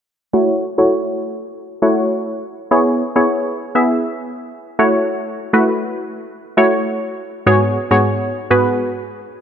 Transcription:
0, 0, Header, 1, 2, 480
1, 0, Start_track
1, 0, Key_signature, 3, "minor"
1, 0, Tempo, 594059
1, 272, Time_signature, 4, 2, 24, 8
1, 7605, End_track
2, 0, Start_track
2, 0, Title_t, "Synth stab"
2, 0, Program_c, 0, 62
2, 270, Note_on_c, 0, 57, 81
2, 271, Note_on_c, 0, 64, 75
2, 273, Note_on_c, 0, 66, 77
2, 275, Note_on_c, 0, 73, 89
2, 525, Note_off_c, 0, 57, 0
2, 526, Note_off_c, 0, 64, 0
2, 527, Note_off_c, 0, 66, 0
2, 528, Note_off_c, 0, 73, 0
2, 630, Note_on_c, 0, 57, 82
2, 631, Note_on_c, 0, 64, 74
2, 633, Note_on_c, 0, 66, 74
2, 634, Note_on_c, 0, 73, 87
2, 1224, Note_off_c, 0, 57, 0
2, 1225, Note_off_c, 0, 64, 0
2, 1225, Note_off_c, 0, 66, 0
2, 1226, Note_off_c, 0, 73, 0
2, 1471, Note_on_c, 0, 57, 83
2, 1473, Note_on_c, 0, 64, 73
2, 1474, Note_on_c, 0, 66, 77
2, 1475, Note_on_c, 0, 73, 94
2, 1980, Note_off_c, 0, 57, 0
2, 1981, Note_off_c, 0, 64, 0
2, 1982, Note_off_c, 0, 66, 0
2, 1982, Note_off_c, 0, 73, 0
2, 2190, Note_on_c, 0, 59, 82
2, 2192, Note_on_c, 0, 64, 79
2, 2193, Note_on_c, 0, 68, 77
2, 2194, Note_on_c, 0, 73, 91
2, 2445, Note_off_c, 0, 59, 0
2, 2446, Note_off_c, 0, 64, 0
2, 2447, Note_off_c, 0, 68, 0
2, 2447, Note_off_c, 0, 73, 0
2, 2551, Note_on_c, 0, 59, 84
2, 2552, Note_on_c, 0, 64, 76
2, 2553, Note_on_c, 0, 68, 75
2, 2554, Note_on_c, 0, 73, 89
2, 2890, Note_off_c, 0, 59, 0
2, 2891, Note_off_c, 0, 64, 0
2, 2892, Note_off_c, 0, 68, 0
2, 2892, Note_off_c, 0, 73, 0
2, 3030, Note_on_c, 0, 59, 79
2, 3031, Note_on_c, 0, 64, 77
2, 3033, Note_on_c, 0, 68, 75
2, 3034, Note_on_c, 0, 76, 89
2, 3709, Note_off_c, 0, 59, 0
2, 3710, Note_off_c, 0, 64, 0
2, 3710, Note_off_c, 0, 68, 0
2, 3711, Note_off_c, 0, 76, 0
2, 3870, Note_on_c, 0, 57, 88
2, 3871, Note_on_c, 0, 64, 81
2, 3872, Note_on_c, 0, 66, 79
2, 3873, Note_on_c, 0, 73, 95
2, 4351, Note_off_c, 0, 57, 0
2, 4352, Note_off_c, 0, 64, 0
2, 4352, Note_off_c, 0, 66, 0
2, 4353, Note_off_c, 0, 73, 0
2, 4470, Note_on_c, 0, 57, 83
2, 4471, Note_on_c, 0, 64, 74
2, 4473, Note_on_c, 0, 66, 76
2, 4474, Note_on_c, 0, 71, 87
2, 5064, Note_off_c, 0, 57, 0
2, 5065, Note_off_c, 0, 64, 0
2, 5066, Note_off_c, 0, 66, 0
2, 5066, Note_off_c, 0, 71, 0
2, 5310, Note_on_c, 0, 57, 85
2, 5312, Note_on_c, 0, 64, 79
2, 5313, Note_on_c, 0, 66, 76
2, 5314, Note_on_c, 0, 73, 91
2, 5819, Note_off_c, 0, 57, 0
2, 5820, Note_off_c, 0, 64, 0
2, 5821, Note_off_c, 0, 66, 0
2, 5821, Note_off_c, 0, 73, 0
2, 6031, Note_on_c, 0, 44, 82
2, 6032, Note_on_c, 0, 59, 77
2, 6033, Note_on_c, 0, 66, 75
2, 6034, Note_on_c, 0, 68, 80
2, 6035, Note_on_c, 0, 73, 93
2, 6286, Note_off_c, 0, 44, 0
2, 6286, Note_off_c, 0, 59, 0
2, 6287, Note_off_c, 0, 66, 0
2, 6287, Note_off_c, 0, 68, 0
2, 6288, Note_off_c, 0, 73, 0
2, 6390, Note_on_c, 0, 44, 80
2, 6391, Note_on_c, 0, 59, 78
2, 6392, Note_on_c, 0, 66, 73
2, 6393, Note_on_c, 0, 68, 74
2, 6394, Note_on_c, 0, 73, 93
2, 6730, Note_off_c, 0, 44, 0
2, 6731, Note_off_c, 0, 59, 0
2, 6731, Note_off_c, 0, 66, 0
2, 6732, Note_off_c, 0, 68, 0
2, 6732, Note_off_c, 0, 73, 0
2, 6872, Note_on_c, 0, 44, 80
2, 6872, Note_on_c, 0, 59, 73
2, 6874, Note_on_c, 0, 66, 76
2, 6874, Note_on_c, 0, 68, 75
2, 6876, Note_on_c, 0, 71, 88
2, 7550, Note_off_c, 0, 44, 0
2, 7550, Note_off_c, 0, 59, 0
2, 7551, Note_off_c, 0, 66, 0
2, 7551, Note_off_c, 0, 68, 0
2, 7552, Note_off_c, 0, 71, 0
2, 7605, End_track
0, 0, End_of_file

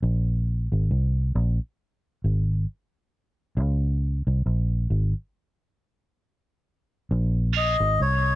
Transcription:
0, 0, Header, 1, 4, 480
1, 0, Start_track
1, 0, Tempo, 884304
1, 8, Time_signature, 4, 2, 24, 8
1, 4534, End_track
2, 0, Start_track
2, 0, Title_t, "Melodica"
2, 0, Program_c, 0, 22
2, 4108, Note_on_c, 0, 75, 99
2, 4345, Note_off_c, 0, 75, 0
2, 4352, Note_on_c, 0, 73, 98
2, 4534, Note_off_c, 0, 73, 0
2, 4534, End_track
3, 0, Start_track
3, 0, Title_t, "Clean electric guitar"
3, 0, Program_c, 1, 27
3, 4087, Note_on_c, 1, 61, 79
3, 4087, Note_on_c, 1, 65, 86
3, 4092, Note_on_c, 1, 68, 94
3, 4093, Note_on_c, 1, 73, 100
3, 4207, Note_off_c, 1, 61, 0
3, 4207, Note_off_c, 1, 65, 0
3, 4209, Note_off_c, 1, 68, 0
3, 4210, Note_off_c, 1, 73, 0
3, 4534, End_track
4, 0, Start_track
4, 0, Title_t, "Fingered electric bass"
4, 0, Program_c, 2, 33
4, 14, Note_on_c, 2, 34, 97
4, 365, Note_off_c, 2, 34, 0
4, 391, Note_on_c, 2, 32, 79
4, 485, Note_off_c, 2, 32, 0
4, 492, Note_on_c, 2, 36, 76
4, 714, Note_off_c, 2, 36, 0
4, 735, Note_on_c, 2, 34, 81
4, 858, Note_off_c, 2, 34, 0
4, 1217, Note_on_c, 2, 32, 75
4, 1437, Note_off_c, 2, 32, 0
4, 1937, Note_on_c, 2, 37, 102
4, 2287, Note_off_c, 2, 37, 0
4, 2317, Note_on_c, 2, 36, 82
4, 2409, Note_off_c, 2, 36, 0
4, 2420, Note_on_c, 2, 34, 76
4, 2639, Note_off_c, 2, 34, 0
4, 2661, Note_on_c, 2, 32, 78
4, 2782, Note_off_c, 2, 32, 0
4, 3859, Note_on_c, 2, 34, 105
4, 4208, Note_off_c, 2, 34, 0
4, 4235, Note_on_c, 2, 32, 82
4, 4328, Note_off_c, 2, 32, 0
4, 4343, Note_on_c, 2, 36, 80
4, 4534, Note_off_c, 2, 36, 0
4, 4534, End_track
0, 0, End_of_file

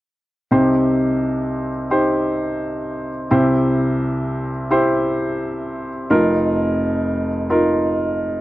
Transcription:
0, 0, Header, 1, 2, 480
1, 0, Start_track
1, 0, Key_signature, -3, "minor"
1, 0, Tempo, 698731
1, 354, Time_signature, 4, 2, 24, 8
1, 5777, End_track
2, 0, Start_track
2, 0, Title_t, "Upright piano"
2, 0, Program_c, 0, 0
2, 350, Note_on_c, 0, 63, 54
2, 353, Note_on_c, 0, 48, 56
2, 354, Note_on_c, 0, 36, 50
2, 354, Note_on_c, 0, 67, 51
2, 357, Note_on_c, 0, 72, 63
2, 479, Control_c, 0, 64, 127
2, 1161, Note_off_c, 0, 63, 0
2, 1163, Note_off_c, 0, 67, 0
2, 1165, Note_off_c, 0, 72, 0
2, 1309, Note_on_c, 0, 63, 52
2, 1310, Note_on_c, 0, 67, 52
2, 1313, Note_on_c, 0, 72, 64
2, 2120, Note_off_c, 0, 63, 0
2, 2121, Note_off_c, 0, 67, 0
2, 2123, Note_off_c, 0, 72, 0
2, 2246, Note_off_c, 0, 36, 0
2, 2246, Note_off_c, 0, 48, 0
2, 2272, Note_on_c, 0, 64, 63
2, 2274, Note_on_c, 0, 36, 53
2, 2274, Note_on_c, 0, 67, 60
2, 2276, Note_on_c, 0, 48, 48
2, 2276, Note_on_c, 0, 72, 66
2, 2281, Control_c, 0, 64, 0
2, 2416, Control_c, 0, 64, 127
2, 3082, Note_off_c, 0, 64, 0
2, 3083, Note_off_c, 0, 67, 0
2, 3084, Note_off_c, 0, 72, 0
2, 3233, Note_on_c, 0, 64, 58
2, 3235, Note_on_c, 0, 67, 61
2, 3238, Note_on_c, 0, 72, 71
2, 4042, Note_off_c, 0, 64, 0
2, 4043, Note_off_c, 0, 67, 0
2, 4045, Note_off_c, 0, 72, 0
2, 4166, Note_off_c, 0, 36, 0
2, 4167, Note_off_c, 0, 48, 0
2, 4191, Note_on_c, 0, 63, 65
2, 4193, Note_on_c, 0, 65, 59
2, 4194, Note_on_c, 0, 29, 52
2, 4194, Note_on_c, 0, 41, 52
2, 4196, Note_on_c, 0, 70, 67
2, 4201, Control_c, 0, 64, 0
2, 4329, Control_c, 0, 64, 127
2, 5001, Note_off_c, 0, 63, 0
2, 5002, Note_off_c, 0, 65, 0
2, 5004, Note_off_c, 0, 70, 0
2, 5150, Note_on_c, 0, 63, 57
2, 5153, Note_on_c, 0, 65, 58
2, 5156, Note_on_c, 0, 70, 62
2, 5777, Note_off_c, 0, 29, 0
2, 5777, Note_off_c, 0, 41, 0
2, 5777, Note_off_c, 0, 63, 0
2, 5777, Note_off_c, 0, 65, 0
2, 5777, Note_off_c, 0, 70, 0
2, 5777, End_track
0, 0, End_of_file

